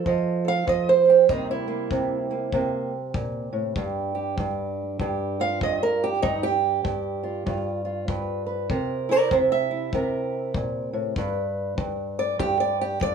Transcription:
Already playing: steel-string acoustic guitar A4
0.06 steel-string acoustic guitar F3 D#5, kick
0.45 steel-string acoustic guitar A4 F5
0.67 steel-string acoustic guitar F3 D#5, kick
0.89 steel-string acoustic guitar C5
1.05 steel-string acoustic guitar F4
1.10 steel-string acoustic guitar G4
1.29 steel-string acoustic guitar C3 G3 A#3 D#4, kick
1.51 steel-string acoustic guitar E4
1.68 steel-string acoustic guitar A#3
1.91 steel-string acoustic guitar C3, kick
2.31 steel-string acoustic guitar A#3
2.52 steel-string acoustic guitar C3 A#3, kick
3.14 steel-string acoustic guitar A#2, kick
3.53 steel-string acoustic guitar A2
3.76 steel-string acoustic guitar G2 G4, kick
4.15 steel-string acoustic guitar G4
4.38 steel-string acoustic guitar G2, kick
5.00 steel-string acoustic guitar G2 G4, kick
5.40 steel-string acoustic guitar F4 F5
5.61 steel-string acoustic guitar G2 D#5, kick
5.83 steel-string acoustic guitar A#4
6.04 steel-string acoustic guitar G4
6.22 steel-string acoustic guitar G2 D#4, kick
6.43 steel-string acoustic guitar G4
6.84 steel-string acoustic guitar G2, kick
7.23 steel-string acoustic guitar F4
7.46 steel-string acoustic guitar G2 F4, kick
7.85 steel-string acoustic guitar F4
8.08 steel-string acoustic guitar G2 B4, kick
8.46 steel-string acoustic guitar B4
8.70 steel-string acoustic guitar C3 A#4, kick
9.09 steel-string acoustic guitar E4 A#4 D5
9.31 steel-string acoustic guitar C3 C5 E5, kick
9.52 steel-string acoustic guitar E5
9.71 steel-string acoustic guitar E4
9.93 steel-string acoustic guitar C3 A#4, kick
10.54 steel-string acoustic guitar A#2, kick
10.93 steel-string acoustic guitar A2
11.16 steel-string acoustic guitar G2 B4, kick
11.78 steel-string acoustic guitar G2, kick
12.19 steel-string acoustic guitar D5
12.39 steel-string acoustic guitar G2 G4, kick
12.60 steel-string acoustic guitar D5
12.81 steel-string acoustic guitar G4
13.01 steel-string acoustic guitar G2 D5, kick

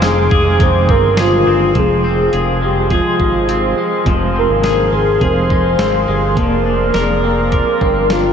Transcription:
Already playing: analog synth bass F1, clean electric guitar F2 C3 D#3 G#3 C4 G#4, analog synth pad C5 F5 G#5 D6
0.02 clean electric guitar G#3, soft synth lead G#4, snare, closed hi-hat, tambourine
0.31 analog synth bass F1, clean electric guitar G#4, kick
0.59 clean electric guitar C3 D#3 G#3, soft synth lead C5, kick, closed hi-hat
0.64 clean electric guitar C4
0.89 analog synth bass G1, clean electric guitar C4, soft synth lead A#4, kick
1.17 soft synth lead F4, clean electric guitar G#4, snare, closed hi-hat, tambourine
1.45 analog synth bass G1, clean electric guitar G#3 C4
1.50 clean electric guitar D#3
1.73 analog synth bass F1, clean electric guitar F2 C3 F3, analog synth pad G#4 C5 F5 C6, kick, closed hi-hat
1.77 clean electric guitar F3 G#3 C4, soft synth lead G#4
2.04 clean electric guitar C4
2.33 analog synth bass F1, clean electric guitar G#4, closed hi-hat
2.62 clean electric guitar G#3, soft synth lead G4
2.90 clean electric guitar C3 F3 G#3 G#4, soft synth lead F4, kick, closed hi-hat
2.94 clean electric guitar C4
3.20 analog synth bass G#1, clean electric guitar G#3, kick
3.49 clean electric guitar C4, closed hi-hat
3.76 clean electric guitar G#3 C4
3.80 clean electric guitar F3
4.04 analog synth bass F1, clean electric guitar F2 C3 F3, kick, closed hi-hat
4.09 clean electric guitar G#3 C4
4.36 clean electric guitar C4, soft synth lead A#4
4.50 analog synth bass G#1
4.63 clean electric guitar G#4, snare, closed hi-hat
4.92 analog synth bass G#1, clean electric guitar G#3, soft synth lead G#4
5.20 analog synth bass F1, clean electric guitar C3 F3 G#3 G#4, soft synth lead C5, kick, closed hi-hat
5.25 clean electric guitar C4
5.50 clean electric guitar G#3, kick
5.79 analog synth bass G#1, clean electric guitar C4, snare, closed hi-hat
6.07 analog synth bass G1, clean electric guitar G#3 C4, soft synth lead G#4
6.11 clean electric guitar F3
6.35 analog synth bass F1, clean electric guitar F3 A#3 C4, analog synth pad A#4 D5, kick, closed hi-hat
6.39 clean electric guitar F4 A#4 D5, soft synth lead A#4
6.66 clean electric guitar D4
6.94 analog synth bass F1, clean electric guitar A#4, snare, closed hi-hat
6.98 soft synth lead G#4
7.24 clean electric guitar C4, soft synth lead A#4
7.51 clean electric guitar C4 F4 A#4, kick, closed hi-hat
7.56 clean electric guitar D5
7.81 analog synth bass G1, clean electric guitar C4, kick
8.10 clean electric guitar D4, soft synth lead F4, snare, closed hi-hat

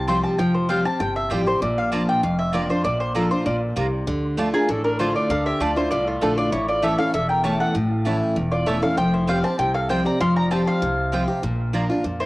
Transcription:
Already playing: upright bass C2, steel-string acoustic guitar C3
0.08 steel-string acoustic guitar F3 G3 C4 G4, mandolin C4 F4 C5 G5 C6
0.23 mandolin A5
0.38 upright bass F1, steel-string acoustic guitar F3, mandolin G5
0.54 mandolin C5
0.69 steel-string acoustic guitar F3 G3 C4 G4, mandolin C4 F4 C5 F5 G5
0.85 steel-string acoustic guitar C4 G4, mandolin A5
1.00 upright bass G1, steel-string acoustic guitar C3, mandolin G5
1.16 mandolin E5
1.30 upright bass A1, steel-string acoustic guitar F3 G3 C4 G4, mandolin C4 F4 C5 D5 G5
1.46 steel-string acoustic guitar C4 G4, mandolin C5
1.62 upright bass A#1, steel-string acoustic guitar A#2, mandolin D5
1.78 mandolin F5
1.92 steel-string acoustic guitar F3 A#3 D4 F4, mandolin A#3 F4 D5 A5 A#5
2.09 mandolin G5
2.23 upright bass F1, steel-string acoustic guitar F2, mandolin F5
2.39 mandolin E5
2.53 steel-string acoustic guitar F3 A#3 D4 F4, mandolin A#3 F4 D5 A#5
2.69 steel-string acoustic guitar D4 F4, mandolin C5
2.84 upright bass A#1, steel-string acoustic guitar A#2, mandolin D5
3.00 mandolin C5
3.15 steel-string acoustic guitar F3 A#3 D4 F4, mandolin A#3 F4 A4 D5 A#5
3.31 steel-string acoustic guitar D4 F4, mandolin C5
3.46 upright bass A#1, steel-string acoustic guitar A#2, resonator guitar played with a steel bar F4, mandolin D5
3.76 upright bass C2, steel-string acoustic guitar C3, mandolin A#3 F4 D5 A#5
4.07 upright bass D2, steel-string acoustic guitar D3
4.37 steel-string acoustic guitar D3 A3 D4 F4, mandolin A3 F4 D5 A5
4.54 resonator guitar played with a steel bar A#3, steel-string acoustic guitar D4 F4, mandolin G#4
4.69 upright bass A1, steel-string acoustic guitar A2, resonator guitar played with a steel bar D4, mandolin A4
4.84 resonator guitar played with a steel bar D4, mandolin A#4
4.99 steel-string acoustic guitar D3 A3 D4 F4, mandolin A3 F4 C5 D5 A5, resonator guitar played with a steel bar F4
5.15 resonator guitar played with a steel bar F4, mandolin D5
5.30 upright bass D2, steel-string acoustic guitar D3, resonator guitar played with a steel bar A4, mandolin F5
5.46 resonator guitar played with a steel bar G4, mandolin E5
5.60 upright bass D2, steel-string acoustic guitar D3 A3 D4 F4, mandolin A3 F4 D5 A5, resonator guitar played with a steel bar F4
5.76 steel-string acoustic guitar D4 F4, resonator guitar played with a steel bar E4, mandolin C5
5.91 upright bass C2, steel-string acoustic guitar A2, resonator guitar played with a steel bar F4, mandolin D5
6.07 resonator guitar played with a steel bar A3, mandolin F4
6.21 upright bass A#1, steel-string acoustic guitar D3 A3 D4 F4, mandolin A3 F4 A4 D5 A5, resonator guitar played with a steel bar D4
6.38 resonator guitar played with a steel bar F4, mandolin D5
6.52 upright bass A1, steel-string acoustic guitar A2, resonator guitar played with a steel bar E4, mandolin C#5
6.68 resonator guitar played with a steel bar F4, mandolin D5
6.82 steel-string acoustic guitar E3 A3 C#4 E4, mandolin A3 E4 C#5 E5 A5, resonator guitar played with a steel bar A4
6.98 steel-string acoustic guitar C#4 E4, resonator guitar played with a steel bar A4, mandolin F5
7.14 upright bass E1, steel-string acoustic guitar E2, resonator guitar played with a steel bar A4, mandolin E5
7.29 resonator guitar played with a steel bar A#4, mandolin G5
7.44 steel-string acoustic guitar E3 A3 C#4 E4, mandolin A3 E4 C#5 A5, resonator guitar played with a steel bar C#5
7.60 resonator guitar played with a steel bar A4, mandolin F#5
7.75 upright bass A1, steel-string acoustic guitar A2
8.05 steel-string acoustic guitar E3 A3 C#4 E4, mandolin A3 E4 C#5 A5
8.36 upright bass E1, steel-string acoustic guitar E2
8.52 resonator guitar played with a steel bar F4, mandolin D5
8.66 steel-string acoustic guitar E3 A3 C#4 E4, mandolin A3 E4 C#5 E5 A5, resonator guitar played with a steel bar A4
8.82 steel-string acoustic guitar C#4 E4, resonator guitar played with a steel bar A4, mandolin F5
8.97 upright bass F1, steel-string acoustic guitar F3, resonator guitar played with a steel bar C5, mandolin G5
9.14 resonator guitar played with a steel bar E4, mandolin C5
9.28 steel-string acoustic guitar F3 G3 C4 G4, mandolin C4 F4 C5 F5 G5, resonator guitar played with a steel bar C5
9.44 steel-string acoustic guitar C4 G4, resonator guitar played with a steel bar C5, mandolin A5
9.59 upright bass C2, steel-string acoustic guitar C3, resonator guitar played with a steel bar C5, mandolin G5
9.74 resonator guitar played with a steel bar A4, mandolin F5
9.89 steel-string acoustic guitar F3 G3 C4 G4, mandolin C4 F4 C5 G5, resonator guitar played with a steel bar C5
10.05 steel-string acoustic guitar C4 G4, resonator guitar played with a steel bar D5, mandolin A#5
10.20 upright bass F1, steel-string acoustic guitar F3, resonator guitar played with a steel bar F5, mandolin C6
10.36 resonator guitar played with a steel bar D5, mandolin A#5
10.51 steel-string acoustic guitar F3 G3 C4 G4, mandolin C4 F4 C5 G5 A5, resonator guitar played with a steel bar C5
10.67 resonator guitar played with a steel bar C5, mandolin F5
10.82 upright bass C2, steel-string acoustic guitar C3
11.12 steel-string acoustic guitar F3 G3 C4 G4, mandolin C4 F4 C5 G5
11.28 steel-string acoustic guitar C4 G4
11.43 upright bass A#1, steel-string acoustic guitar A#2
11.73 steel-string acoustic guitar F3 A#3 D4 F4, mandolin A#3 F4 D5 A#5
11.89 steel-string acoustic guitar D4 F4
12.04 upright bass F2, steel-string acoustic guitar A#2
12.20 resonator guitar played with a steel bar E4, mandolin C5

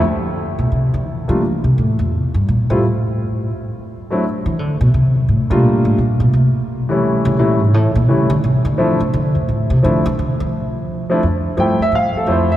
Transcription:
0.59 upright bass B2
0.72 upright bass C3
0.94 upright bass D3
1.07 upright bass E3
1.28 upright bass F3, grand piano G3 A3 A#3 D4 F4
1.43 upright bass E3
1.64 upright bass C3
1.78 upright bass A2
1.99 upright bass F2
2.12 upright bass E2
2.34 upright bass G2
2.49 upright bass A#2
2.70 upright bass A2, grand piano G3 A3 C4 E4 F4
4.10 grand piano F#3 A3 C4 D4 E4
4.46 upright bass E3
4.59 upright bass D3
4.81 upright bass B2
4.94 upright bass C3
5.15 upright bass E2
5.29 upright bass A2
5.50 upright bass C3, grand piano G3 A3 A#3 D4 F4
5.64 upright bass A#2
5.85 upright bass A2
5.98 upright bass A#2
6.20 upright bass B2
6.33 upright bass C3
6.89 grand piano E3 G3 A3 C#4 E4
7.25 upright bass C#3
7.38 upright bass A#2, grand piano E3 G3 A3 C#4 E4
7.60 upright bass G#2
7.74 upright bass A2
7.95 upright bass A#2
8.08 upright bass C#3, grand piano E3 G3 A3 C#4 E4
8.30 upright bass D3
8.44 upright bass C3
8.65 upright bass D3
8.78 upright bass E3, grand piano F3 A3 C4 D4 E4
9.00 upright bass C#3
9.14 upright bass D3
9.35 upright bass F2
9.49 upright bass A2
9.70 upright bass C3
9.83 upright bass D3, grand piano F3 A3 C4 D4 E4
10.06 upright bass E3
10.19 upright bass F3
10.40 upright bass F3
11.10 grand piano F3 A3 C4 D4 E4
11.23 upright bass F2
11.57 upright bass G2, grand piano F3 A3 C4 E4 G5
11.80 grand piano E5, muted upright bass stroke
11.92 upright bass A2, grand piano F5
12.14 grand piano A4, muted upright bass stroke
12.27 upright bass F2, grand piano F3 A3 C4 E4
12.31 grand piano C5
12.52 grand piano E5

